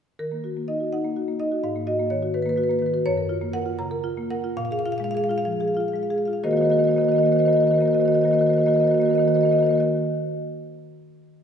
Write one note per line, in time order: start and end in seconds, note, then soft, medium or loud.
0.19 1.59 D#3 medium
0.19 0.65 A#4 medium
0.32 0.51 A#3 soft
0.44 0.63 F#4 soft
0.57 0.75 A#3 soft
0.68 0.87 D#4 soft
0.68 0.91 D#5 medium
0.80 0.99 F#4 soft
0.93 1.11 D#4 soft
0.93 1.38 F#5 medium
1.05 1.23 A#3 soft
1.17 1.35 F#4 soft
1.28 1.47 A#3 soft
1.40 1.59 D#4 soft
1.40 1.62 D#5 medium
1.51 1.63 F#4 soft
1.64 3.02 G#2 medium
1.64 1.86 F5 medium
1.76 1.94 A#3 soft
1.87 2.06 F#4 medium
1.87 2.10 D#5 medium
1.99 2.18 A#3 soft
2.10 2.29 D#3 soft
2.10 2.33 C#5 medium
2.23 2.41 F#4 medium
2.34 2.53 D#3 soft
2.34 2.42 B4 medium
2.42 2.65 A#3 medium
2.42 2.49 B4 medium
2.49 2.56 B4 medium
2.56 2.76 F#4 medium
2.56 2.64 B4 medium
2.64 2.71 B4 medium
2.70 2.89 A#3 soft
2.70 2.79 B4 medium
2.79 3.01 D#3 medium
2.79 2.86 B4 medium
2.86 2.94 B4 medium
2.94 3.05 F#4 soft
2.94 3.03 B4 medium
3.06 4.55 F#2 medium
3.06 3.52 C#5 medium
3.17 3.37 A#4 medium
3.29 3.49 F4 medium
3.41 3.61 A#3 medium
3.53 3.74 A#4 medium
3.53 3.78 F#5 loud
3.66 3.86 F4 medium
3.79 3.99 C#3 medium
3.79 4.29 A#5 medium
3.91 4.12 A#4 medium
4.04 4.25 F4 medium
4.17 4.39 A#3 medium
4.30 4.52 A#4 medium
4.30 4.57 F#5 medium
4.44 4.58 F4 medium
4.57 6.40 A#2 medium
4.57 4.65 F5 loud
4.65 4.72 F5 medium
4.71 4.94 G#4 soft
4.71 4.79 F5 medium
4.79 4.86 F5 medium
4.86 5.09 F4 medium
4.86 4.92 F5 medium
4.92 4.98 F5 medium
4.98 5.24 G#3 medium
4.98 5.04 F5 medium
5.04 5.11 F5 medium
5.11 5.39 G#4 medium
5.11 5.17 F5 medium
5.17 5.24 F5 medium
5.24 5.31 F5 medium
5.29 5.54 F4 medium
5.29 5.38 F5 medium
5.38 5.41 F5 medium
5.45 5.70 F3 medium
5.45 5.52 F5 medium
5.52 5.60 F5 medium
5.60 5.86 G#4 medium
5.60 5.68 F5 medium
5.68 5.74 F5 medium
5.74 6.03 F4 medium
5.74 5.80 F5 medium
5.80 5.88 F5 medium
5.88 5.96 F5 medium
5.93 6.21 G#3 soft
5.93 6.03 F5 medium
6.03 6.11 F5 medium
6.10 6.38 G#4 medium
6.10 6.18 F5 medium
6.18 6.25 F5 medium
6.25 6.44 F4 medium
6.25 6.33 F5 medium
6.33 6.40 F5 medium
6.44 6.53 D#3 medium
6.44 6.53 A#3 medium
6.44 6.51 F#4 medium
6.44 6.51 A#4 medium
6.44 6.51 C5 medium
6.44 6.51 D#5 medium
6.51 6.61 D#3 medium
6.51 6.62 A#3 soft
6.51 6.57 F#4 soft
6.51 6.58 A#4 soft
6.51 6.58 C5 soft
6.51 6.57 D#5 medium
6.57 6.65 F#4 medium
6.57 6.65 A#4 soft
6.57 6.65 C5 soft
6.57 6.63 D#5 medium
6.61 6.70 D#3 medium
6.61 6.70 A#3 soft
6.61 6.72 F#4 soft
6.61 6.72 A#4 soft
6.61 6.73 C5 soft
6.61 6.70 D#5 medium
6.70 6.79 D#3 medium
6.70 6.79 A#3 soft
6.70 6.78 F#4 medium
6.70 6.78 A#4 soft
6.70 6.80 C5 soft
6.70 6.77 D#5 medium
6.77 6.89 D#3 medium
6.77 6.88 A#3 soft
6.77 6.87 F#4 soft
6.77 6.85 A#4 soft
6.77 6.87 C5 soft
6.77 6.84 D#5 medium
6.84 6.95 F#4 medium
6.84 6.93 A#4 soft
6.84 6.94 C5 soft
6.84 6.91 D#5 medium
6.88 6.98 D#3 medium
6.88 6.97 A#3 soft
6.88 6.97 D#5 medium
6.93 7.06 A#3 soft
6.93 7.02 F#4 soft
6.93 7.00 A#4 soft
6.93 7.01 C5 soft
6.97 7.08 D#3 medium
6.97 7.06 A#4 soft
6.97 7.09 C5 soft
6.97 7.04 D#5 medium
7.02 7.09 F#4 medium
7.02 7.12 D#5 medium
7.06 7.18 D#3 medium
7.06 7.15 A#3 soft
7.06 7.16 F#4 soft
7.06 7.14 A#4 soft
7.06 7.17 C5 soft
7.12 7.23 A#3 soft
7.12 7.20 A#4 soft
7.12 7.19 D#5 medium
7.16 7.27 D#3 medium
7.16 7.25 F#4 soft
7.16 7.24 C5 soft
7.16 7.26 D#5 medium
7.20 7.32 A#3 soft
7.20 7.28 A#4 soft
7.20 7.32 C5 soft
7.25 7.36 D#3 medium
7.25 7.32 F#4 soft
7.25 7.35 A#4 soft
7.25 7.33 D#5 medium
7.32 7.40 A#3 soft
7.32 7.40 F#4 soft
7.32 7.42 A#4 soft
7.32 7.38 C5 soft
7.32 7.39 D#5 medium
7.36 7.45 D#3 medium
7.36 7.48 F#4 soft
7.36 7.46 C5 soft
7.36 7.46 D#5 medium
7.40 7.48 A#3 soft
7.40 7.50 A#4 soft
7.45 7.54 D#3 medium
7.45 7.56 A#3 medium
7.45 7.56 F#4 soft
7.45 7.53 C5 soft
7.45 7.53 D#5 medium
7.50 7.57 A#4 soft
7.50 7.60 C5 soft
7.50 7.60 D#5 medium
7.54 7.63 D#3 medium
7.54 7.65 A#3 soft
7.54 7.63 F#4 soft
7.54 7.64 A#4 soft
7.60 7.71 D#3 medium
7.60 7.71 F#4 soft
7.60 7.68 C5 soft
7.60 7.67 D#5 medium
7.64 7.74 A#3 soft
7.64 7.72 A#4 soft
7.64 7.76 C5 soft
7.64 7.74 D#5 medium
7.71 7.79 D#3 medium
7.71 7.82 A#3 soft
7.71 7.78 F#4 soft
7.71 7.78 A#4 soft
7.71 7.80 D#5 medium
7.76 7.87 D#3 medium
7.76 7.86 F#4 soft
7.76 7.85 A#4 soft
7.76 7.83 C5 soft
7.80 7.90 A#3 soft
7.80 7.91 C5 soft
7.80 7.88 D#5 medium
7.85 7.96 D#3 medium
7.85 7.93 F#4 soft
7.85 7.93 A#4 soft
7.85 7.94 D#5 medium
7.90 8.00 A#3 soft
7.90 8.00 F#4 soft
7.90 7.98 A#4 soft
7.90 7.98 C5 soft
7.94 8.05 D#3 medium
7.94 8.05 A#4 soft
7.94 8.05 C5 soft
7.94 8.01 D#5 medium
8.00 8.08 A#3 soft
8.00 8.08 F#4 soft
8.00 8.08 D#5 medium
8.05 8.15 D#3 medium
8.05 8.16 A#3 soft
8.05 8.16 F#4 medium
8.05 8.12 A#4 soft
8.05 8.13 C5 soft
8.05 8.14 D#5 medium
8.12 8.23 D#3 medium
8.12 8.24 F#4 soft
8.12 8.19 A#4 soft
8.12 8.20 C5 soft
8.12 8.21 D#5 medium
8.16 8.25 A#3 soft
8.16 8.26 A#4 soft
8.16 8.27 C5 soft
8.21 8.31 D#3 medium
8.21 8.33 A#3 soft
8.21 8.31 F#4 soft
8.21 8.28 D#5 medium
8.26 8.32 A#4 soft
8.26 8.34 C5 soft
8.26 8.34 D#5 medium
8.31 8.41 D#3 medium
8.31 8.42 A#3 medium
8.31 8.38 F#4 soft
8.31 8.39 A#4 soft
8.31 8.42 C5 soft
8.31 8.41 D#5 medium
8.38 8.49 D#3 medium
8.38 8.50 A#3 soft
8.38 8.47 F#4 soft
8.38 8.46 A#4 soft
8.38 8.49 C5 soft
8.38 8.47 D#5 medium
8.46 8.58 D#3 medium
8.46 8.58 A#3 soft
8.46 8.54 F#4 soft
8.46 8.53 A#4 soft
8.46 8.56 C5 soft
8.46 8.53 D#5 medium
8.53 8.61 F#4 soft
8.53 8.60 A#4 soft
8.53 8.63 C5 soft
8.53 8.59 D#5 medium
8.58 8.67 D#3 medium
8.58 8.66 A#3 soft
8.58 8.68 F#4 soft
8.58 8.67 A#4 soft
8.58 8.66 D#5 medium
8.63 8.77 D#3 medium
8.63 8.75 A#3 soft
8.63 8.70 C5 soft
8.63 8.74 D#5 medium
8.67 8.76 F#4 medium
8.67 8.75 A#4 soft
8.67 8.77 C5 soft
8.74 8.86 D#3 medium
8.74 8.84 A#3 soft
8.74 8.83 F#4 soft
8.74 8.81 A#4 soft
8.74 8.84 C5 soft
8.74 8.80 D#5 medium
8.80 8.91 A#3 soft
8.80 8.90 F#4 soft
8.80 8.88 A#4 soft
8.80 8.87 D#5 medium
8.84 8.94 D#3 medium
8.84 8.96 A#4 soft
8.84 8.91 C5 soft
8.84 8.94 D#5 medium
8.90 9.00 A#3 soft
8.90 8.98 F#4 soft
8.90 8.98 C5 soft
8.90 9.01 D#5 medium
8.94 9.03 D#3 medium
8.94 9.06 F#4 soft
8.94 9.03 A#4 soft
8.94 9.05 C5 soft
9.00 9.11 D#3 medium
9.00 9.09 A#3 medium
9.00 9.10 A#4 soft
9.00 9.08 D#5 medium
9.05 9.13 F#4 soft
9.05 9.13 C5 soft
9.05 9.15 D#5 medium
9.09 9.19 D#3 medium
9.09 9.18 A#3 soft
9.09 9.17 A#4 soft
9.09 9.21 C5 soft
9.13 9.22 F#4 soft
9.13 9.25 A#4 soft
9.13 9.23 D#5 medium
9.18 9.28 D#3 medium
9.18 9.27 A#3 medium
9.18 9.27 C5 soft
9.22 9.29 F#4 soft
9.22 9.32 A#4 soft
9.22 9.28 D#5 medium
9.27 9.37 D#3 medium
9.27 9.36 A#3 soft
9.27 9.37 F#4 soft
9.27 9.35 C5 soft
9.27 9.34 D#5 medium
9.32 9.43 A#3 medium
9.32 9.39 A#4 soft
9.32 9.42 C5 soft
9.32 9.41 D#5 medium
9.37 9.45 D#3 medium
9.37 9.43 F#4 soft
9.37 9.45 A#4 soft
9.41 9.52 A#3 soft
9.41 9.51 F#4 soft
9.41 9.49 C5 soft
9.41 9.47 D#5 medium
9.45 9.54 D#3 medium
9.45 9.53 A#4 soft
9.45 9.56 C5 soft
9.45 9.53 D#5 medium
9.51 9.62 D#3 medium
9.51 9.61 A#3 soft
9.51 9.58 F#4 soft
9.51 9.60 A#4 soft
9.51 9.59 D#5 medium
9.56 9.65 F#4 soft
9.56 9.67 A#4 soft
9.56 9.64 C5 soft
9.56 9.66 D#5 medium
9.61 9.71 D#3 medium
9.61 9.69 A#3 soft
9.61 9.70 C5 soft
9.65 9.73 F#4 soft
9.65 9.75 A#4 soft
9.65 9.73 D#5 medium
9.69 9.79 D#3 medium
9.69 9.78 A#3 soft
9.69 9.80 F#4 soft
9.69 9.77 C5 soft
9.73 9.83 A#4 soft
9.73 9.80 D#5 medium
9.77 9.86 D#3 medium
9.77 9.86 A#3 soft
9.77 9.86 F#4 soft
9.77 9.86 C5 soft
9.77 9.86 D#5 medium
9.83 9.86 A#4 soft